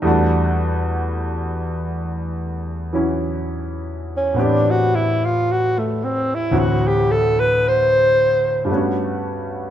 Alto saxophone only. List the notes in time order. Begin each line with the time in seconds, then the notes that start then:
4.17 C#4
4.43 D4
4.70 F#4
4.95 E4
5.25 F4
5.51 F#4
5.79 A3
6.04 C4
6.35 E4
6.59 F#4
6.88 G4
7.11 A4
7.40 B4
7.68 C5